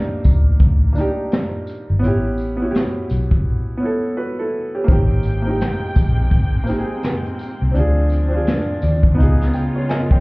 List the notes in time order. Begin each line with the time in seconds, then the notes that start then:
Already playing: A#3 D4 D#4 G4
0.24 D2, kick, closed hi-hat, tambourine
0.60 D2, kick, closed hi-hat
0.93 A#3 D4, tambourine
0.98 D#4 G4, closed hi-hat
1.32 snare, closed hi-hat
1.67 closed hi-hat, tambourine
1.90 G1
1.99 B3 C#4
2.04 A1 E4 G4, closed hi-hat
2.38 closed hi-hat, tambourine
2.57 B3 C#4
2.62 E4 F#4
2.71 G4, closed hi-hat
2.76 snare
3.10 B1, closed hi-hat, tambourine
3.31 kick
3.77 B3 C#4
3.83 E4 A4
4.17 F#4 B4
4.39 E4 A4
4.75 C#4 G4
4.84 A#3 C4
4.88 G#1 G#3 C4 D#4 G4 G5, kick, closed hi-hat
5.23 closed hi-hat, tambourine
5.42 A#3 C4
5.47 D#4 G4
5.61 snare, closed hi-hat
5.96 A#1, kick, closed hi-hat, tambourine
6.31 G#1, kick, closed hi-hat
6.64 A#3 C4, tambourine
6.69 D#4 G4, closed hi-hat
6.78 G#4
7.03 snare, closed hi-hat
7.25 closed hi-hat
7.39 closed hi-hat, tambourine
7.62 C2
7.71 F3 C4 D4, closed hi-hat
7.76 D2 F4 G#4
8.10 closed hi-hat, tambourine
8.28 C4 D4
8.34 F4 G#4
8.47 snare, closed hi-hat
8.82 D#2 D5, closed hi-hat, tambourine
9.03 kick
9.14 C#3 G#3 B3 D#4 F4 D#5
9.19 C#2 F4 G#4, closed hi-hat
9.41 snare
9.53 G5, closed hi-hat, tambourine
9.75 G#4 C#5
9.89 A#4 D#5 G#5, snare, closed hi-hat
10.11 C#5 G5, kick